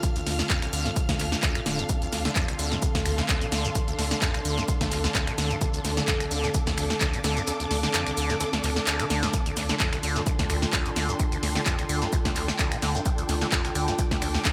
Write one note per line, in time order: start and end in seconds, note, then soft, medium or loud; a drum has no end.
0.00 0.07 D2 medium
0.00 14.53 D3 medium
0.00 9.30 C4 medium
0.00 14.53 D4 medium
0.00 1.88 F4 loud
0.00 14.53 A4 medium
0.00 10.47 F5 medium
0.00 2.33 F6 medium
0.00 kick loud
0.00 closed hi-hat medium
0.00 shaker medium
0.00 shekere medium
0.16 0.22 D2 medium
0.16 closed hi-hat medium
0.16 shekere soft
0.26 0.33 D2 medium
0.26 0.42 D2 loud
0.26 snare soft
0.26 open hi-hat loud
0.26 open hi-hat medium
0.39 0.43 D2 loud
0.39 snare medium
0.39 closed hi-hat soft
0.39 shekere medium
0.50 0.60 F2 medium
0.50 kick loud
0.50 snare loud
0.50 clap loud
0.50 closed hi-hat medium
0.50 shaker medium
0.50 shekere medium
0.62 0.68 C2 medium
0.62 finger snap medium
0.62 closed hi-hat medium
0.62 shekere soft
0.73 0.88 D2 loud
0.73 0.87 D3 medium
0.73 open hi-hat loud
0.73 shaker medium
0.85 0.92 D2 loud
0.85 snare soft
0.85 closed hi-hat soft
0.85 shekere medium
0.96 1.00 D2 medium
0.96 kick loud
0.96 closed hi-hat medium
0.96 shekere medium
0.96 shaker medium
1.09 1.15 D2 medium
1.09 kick medium
1.09 snare medium
1.09 closed hi-hat medium
1.09 shekere soft
1.20 1.27 D2 medium
1.20 1.35 D2 loud
1.20 clap soft
1.20 open hi-hat loud
1.20 shaker medium
1.32 1.36 D2 loud
1.32 snare medium
1.32 shekere medium
1.43 1.57 D2 medium
1.43 kick loud
1.43 snare loud
1.43 clap loud
1.43 closed hi-hat medium
1.43 shaker medium
1.43 shekere medium
1.55 1.61 D3 loud
1.55 finger snap medium
1.55 closed hi-hat medium
1.55 closed hi-hat soft
1.55 shekere soft
1.66 1.81 D1 loud
1.66 1.80 D3 medium
1.66 snare medium
1.66 open hi-hat loud
1.66 shaker medium
1.78 1.85 D2 loud
1.78 closed hi-hat soft
1.78 shekere medium
1.89 1.94 D2 medium
1.89 9.32 A4 loud
1.89 kick loud
1.89 closed hi-hat medium
1.89 shekere medium
1.89 shaker medium
2.02 2.08 D2 medium
2.02 closed hi-hat soft
2.02 shekere soft
2.13 2.20 D2 medium
2.13 2.28 D2 loud
2.13 snare soft
2.13 open hi-hat loud
2.13 shaker medium
2.25 2.31 D3 medium
2.25 snare medium
2.25 shekere medium
2.31 6.05 C6 medium
2.35 2.46 F2 medium
2.35 kick loud
2.35 snare loud
2.35 clap loud
2.35 closed hi-hat medium
2.35 shekere medium
2.35 shaker medium
2.48 2.54 C2 medium
2.48 finger snap medium
2.48 closed hi-hat medium
2.48 shekere soft
2.59 2.74 D2 loud
2.59 2.73 D3 medium
2.59 snare medium
2.59 open hi-hat loud
2.59 shaker medium
2.72 2.78 D2 loud
2.72 snare soft
2.72 closed hi-hat soft
2.72 shekere medium
2.82 2.87 D2 medium
2.82 kick loud
2.82 closed hi-hat medium
2.82 shekere medium
2.82 shaker medium
2.95 3.01 D2 medium
2.95 kick medium
2.95 snare medium
2.95 closed hi-hat medium
2.95 shekere soft
3.06 3.21 D2 loud
3.06 3.13 D2 medium
3.06 finger snap medium
3.06 open hi-hat loud
3.06 shaker medium
3.18 3.22 D2 loud
3.18 snare medium
3.18 shekere medium
3.29 3.43 D2 medium
3.29 kick loud
3.29 snare loud
3.29 clap loud
3.29 closed hi-hat medium
3.29 shaker medium
3.29 shekere medium
3.41 3.47 D3 loud
3.41 closed hi-hat medium
3.41 shekere soft
3.52 3.67 D2 medium
3.52 3.66 D3 medium
3.52 snare medium
3.52 open hi-hat loud
3.52 shaker medium
3.65 3.71 D2 loud
3.65 closed hi-hat soft
3.65 shekere medium
3.75 3.80 D2 medium
3.75 kick loud
3.75 closed hi-hat medium
3.75 shekere medium
3.75 shaker medium
3.88 3.94 D2 medium
3.88 closed hi-hat medium
3.88 shekere soft
3.99 4.14 D2 loud
3.99 4.06 D2 medium
3.99 snare soft
3.99 open hi-hat loud
3.99 open hi-hat medium
4.11 4.17 D3 medium
4.11 snare medium
4.11 closed hi-hat soft
4.11 shekere medium
4.22 4.32 F2 medium
4.22 kick loud
4.22 snare loud
4.22 clap loud
4.22 closed hi-hat medium
4.22 shekere medium
4.22 shaker medium
4.34 4.40 C2 medium
4.34 finger snap medium
4.34 closed hi-hat medium
4.34 shekere soft
4.45 4.60 D2 loud
4.45 4.59 D3 medium
4.45 open hi-hat loud
4.45 shaker medium
4.58 4.64 D2 loud
4.58 snare soft
4.58 closed hi-hat soft
4.58 shekere medium
4.68 4.73 D2 medium
4.68 kick loud
4.68 closed hi-hat medium
4.68 shaker medium
4.68 shekere medium
4.81 4.88 D2 medium
4.81 4.87 D2 medium
4.81 kick medium
4.81 snare medium
4.81 closed hi-hat medium
4.81 shekere soft
4.92 5.07 D2 loud
4.92 4.99 D2 medium
4.92 clap soft
4.92 open hi-hat loud
4.92 shaker medium
5.04 5.08 D2 loud
5.04 snare medium
5.04 shekere medium
5.15 5.29 D2 medium
5.15 kick loud
5.15 snare loud
5.15 clap loud
5.15 closed hi-hat medium
5.15 shaker medium
5.15 shekere medium
5.27 5.33 D3 loud
5.27 finger snap medium
5.27 closed hi-hat medium
5.27 closed hi-hat soft
5.27 shekere soft
5.38 5.53 D2 medium
5.38 5.52 D3 medium
5.38 snare medium
5.38 open hi-hat loud
5.38 shaker medium
5.50 5.57 D2 loud
5.50 closed hi-hat soft
5.50 shekere medium
5.61 5.66 D2 medium
5.61 kick loud
5.61 closed hi-hat medium
5.61 shekere medium
5.61 shaker medium
5.73 5.80 D2 medium
5.73 closed hi-hat medium
5.73 shekere soft
5.85 6.00 D2 loud
5.85 5.92 D2 medium
5.85 snare soft
5.85 open hi-hat loud
5.85 shaker medium
5.97 6.03 D3 medium
5.97 snare medium
5.97 shekere medium
6.03 9.77 D6 medium
6.08 6.18 F2 medium
6.08 kick loud
6.08 snare loud
6.08 clap loud
6.08 closed hi-hat medium
6.08 shekere medium
6.08 shaker medium
6.20 6.26 C2 medium
6.20 finger snap medium
6.20 closed hi-hat medium
6.20 shekere soft
6.31 6.46 D2 loud
6.31 6.45 D3 medium
6.31 snare medium
6.31 open hi-hat loud
6.31 shaker medium
6.44 6.50 D2 loud
6.44 snare soft
6.44 closed hi-hat soft
6.44 shekere medium
6.54 6.59 D2 medium
6.54 kick loud
6.54 closed hi-hat medium
6.54 shekere medium
6.54 shaker medium
6.67 6.73 D2 medium
6.67 6.74 D2 medium
6.67 kick medium
6.67 snare medium
6.67 closed hi-hat medium
6.67 shekere soft
6.78 6.85 D2 medium
6.78 6.93 D2 loud
6.78 finger snap medium
6.78 open hi-hat loud
6.78 shaker medium
6.90 6.94 D2 loud
6.90 snare medium
6.90 shekere medium
7.01 7.15 D2 medium
7.01 kick loud
7.01 snare loud
7.01 clap loud
7.01 closed hi-hat medium
7.01 shekere medium
7.01 shaker medium
7.14 7.19 D3 loud
7.14 closed hi-hat medium
7.14 shekere soft
7.24 7.39 D2 medium
7.24 7.38 D3 medium
7.24 snare medium
7.24 snare loud
7.24 open hi-hat loud
7.24 shaker medium
7.37 7.43 D2 loud
7.37 closed hi-hat soft
7.37 shekere medium
7.47 7.52 D2 medium
7.47 snare loud
7.47 closed hi-hat medium
7.47 shekere medium
7.47 shaker medium
7.60 7.66 D2 medium
7.60 closed hi-hat medium
7.60 shekere soft
7.71 7.78 D2 medium
7.71 7.86 D2 loud
7.71 snare soft
7.71 open hi-hat loud
7.71 open hi-hat medium
7.83 7.89 D3 medium
7.83 snare medium
7.83 shekere medium
7.94 8.04 F2 medium
7.94 snare loud
7.94 clap loud
7.94 closed hi-hat medium
7.94 shaker medium
7.94 shekere medium
8.07 8.12 C2 medium
8.07 finger snap medium
8.07 closed hi-hat medium
8.07 shekere soft
8.17 8.32 D2 loud
8.17 8.31 D3 medium
8.17 open hi-hat loud
8.17 shaker medium
8.29 8.36 D2 loud
8.29 snare soft
8.29 closed hi-hat soft
8.29 shekere medium
8.40 8.45 D2 medium
8.40 snare loud
8.40 closed hi-hat medium
8.40 shekere medium
8.40 shaker medium
8.53 8.59 D2 medium
8.53 8.60 D2 medium
8.53 snare medium
8.53 closed hi-hat medium
8.53 shekere soft
8.64 8.71 D2 medium
8.64 8.79 D2 medium
8.64 clap soft
8.64 open hi-hat loud
8.64 shaker medium
8.76 8.80 D2 loud
8.76 snare medium
8.76 shekere medium
8.87 9.01 D2 medium
8.87 snare loud
8.87 clap loud
8.87 closed hi-hat medium
8.87 shekere medium
8.87 shaker medium
8.99 9.05 D3 loud
8.99 finger snap medium
8.99 closed hi-hat medium
8.99 closed hi-hat soft
8.99 shekere soft
9.10 9.25 D2 medium
9.10 9.24 D3 medium
9.10 snare medium
9.10 open hi-hat loud
9.10 shaker medium
9.23 9.29 D2 loud
9.23 snare medium
9.23 closed hi-hat soft
9.23 shekere medium
9.34 9.38 D2 medium
9.34 14.53 D4 medium
9.34 14.53 F4 loud
9.34 kick loud
9.34 closed hi-hat medium
9.34 shaker medium
9.34 shekere medium
9.46 9.52 D2 medium
9.46 closed hi-hat medium
9.46 shekere soft
9.57 9.72 D2 loud
9.57 9.64 D2 medium
9.57 snare soft
9.57 open hi-hat loud
9.57 shaker medium
9.69 9.75 D3 medium
9.69 snare medium
9.69 closed hi-hat soft
9.69 shekere medium
9.75 13.49 C6 medium
9.80 9.90 F2 medium
9.80 kick loud
9.80 snare loud
9.80 clap loud
9.80 closed hi-hat medium
9.80 shekere medium
9.80 shaker medium
9.93 9.99 C2 medium
9.93 finger snap medium
9.93 closed hi-hat medium
9.93 shekere soft
10.03 10.18 D2 loud
10.03 10.17 D3 medium
10.03 snare medium
10.03 open hi-hat loud
10.03 shaker medium
10.16 10.22 D2 loud
10.16 snare soft
10.16 closed hi-hat soft
10.16 shekere medium
10.27 10.31 D2 medium
10.27 kick loud
10.27 closed hi-hat medium
10.27 shaker medium
10.27 shekere medium
10.34 14.53 G5 medium
10.39 10.46 D2 medium
10.39 10.45 D2 medium
10.39 kick medium
10.39 snare medium
10.39 closed hi-hat medium
10.39 shekere soft
10.50 10.65 D2 loud
10.50 10.57 D2 medium
10.50 finger snap medium
10.50 open hi-hat loud
10.50 shaker medium
10.62 10.66 D2 loud
10.62 snare medium
10.62 shekere medium
10.72 10.87 D2 medium
10.72 kick loud
10.72 snare loud
10.72 clap loud
10.72 closed hi-hat medium
10.72 shekere medium
10.72 shaker medium
10.86 10.92 D3 loud
10.86 closed hi-hat medium
10.86 shekere soft
10.96 11.11 D2 medium
10.96 11.10 D3 medium
10.96 snare medium
10.96 open hi-hat loud
10.96 shaker medium
11.09 11.15 D2 loud
11.09 closed hi-hat soft
11.09 shekere medium
11.19 11.24 D2 medium
11.19 kick loud
11.19 closed hi-hat medium
11.19 shaker medium
11.19 shekere medium
11.32 11.38 D2 medium
11.32 closed hi-hat medium
11.32 shekere soft
11.43 11.50 D2 medium
11.43 11.58 D2 loud
11.43 snare soft
11.43 open hi-hat loud
11.43 open hi-hat medium
11.55 11.61 D3 medium
11.55 snare medium
11.55 closed hi-hat soft
11.55 shekere medium
11.66 11.76 F2 medium
11.66 kick loud
11.66 snare loud
11.66 clap loud
11.66 closed hi-hat medium
11.66 shaker medium
11.66 shekere medium
11.79 11.85 C2 medium
11.79 finger snap medium
11.79 closed hi-hat medium
11.79 shekere soft
11.89 12.04 D2 loud
11.89 12.03 D3 medium
11.89 open hi-hat loud
11.89 shaker medium
12.02 12.08 D2 loud
12.02 snare soft
12.02 closed hi-hat soft
12.02 shekere medium
12.13 12.17 D2 medium
12.13 kick loud
12.13 closed hi-hat medium
12.13 shaker medium
12.13 shekere medium
12.25 12.31 D2 medium
12.25 12.32 D2 medium
12.25 kick medium
12.25 snare medium
12.25 closed hi-hat medium
12.25 shekere soft
12.36 12.43 D2 medium
12.36 12.51 D2 loud
12.36 clap soft
12.36 open hi-hat loud
12.36 shaker medium
12.48 12.52 D2 loud
12.48 snare medium
12.48 shekere medium
12.59 12.73 D2 medium
12.59 kick loud
12.59 snare loud
12.59 clap loud
12.59 closed hi-hat medium
12.59 shaker medium
12.59 shekere medium
12.72 12.78 D3 loud
12.72 finger snap medium
12.72 closed hi-hat medium
12.72 closed hi-hat soft
12.72 shekere soft
12.82 12.97 D2 medium
12.82 12.96 D3 medium
12.82 snare medium
12.82 open hi-hat loud
12.82 shaker medium
12.95 13.01 D2 loud
12.95 closed hi-hat soft
12.95 shekere medium
13.05 13.10 D2 medium
13.05 kick loud
13.05 closed hi-hat medium
13.05 shekere medium
13.05 shaker medium
13.18 13.24 D2 medium
13.18 closed hi-hat medium
13.18 shekere soft
13.29 13.44 D2 loud
13.29 13.36 D2 medium
13.29 snare soft
13.29 open hi-hat loud
13.29 shaker medium
13.41 13.47 D3 medium
13.41 snare medium
13.41 closed hi-hat soft
13.41 shekere medium
13.47 14.53 D6 medium
13.52 13.63 F2 medium
13.52 kick loud
13.52 snare loud
13.52 clap loud
13.52 closed hi-hat medium
13.52 shekere medium
13.52 shaker medium
13.65 13.71 C2 medium
13.65 finger snap medium
13.65 closed hi-hat medium
13.65 shekere soft
13.75 13.90 D2 loud
13.75 13.90 D3 medium
13.75 snare medium
13.75 open hi-hat loud
13.75 shaker medium
13.88 13.94 D2 loud
13.88 snare soft
13.88 closed hi-hat soft
13.88 shekere medium
13.99 14.03 D2 medium
13.99 kick loud
13.99 closed hi-hat medium
13.99 shaker medium
13.99 shekere medium
14.11 14.18 D2 medium
14.11 14.17 D2 medium
14.11 kick medium
14.11 snare medium
14.11 closed hi-hat medium
14.11 shekere soft
14.22 14.29 D2 medium
14.22 14.37 D2 loud
14.22 finger snap medium
14.22 open hi-hat loud
14.22 shaker medium
14.34 14.38 D2 loud
14.34 snare medium
14.34 shekere medium
14.45 14.53 D2 medium
14.45 kick loud
14.45 snare loud
14.45 clap loud
14.45 closed hi-hat medium
14.45 shaker medium
14.45 shekere medium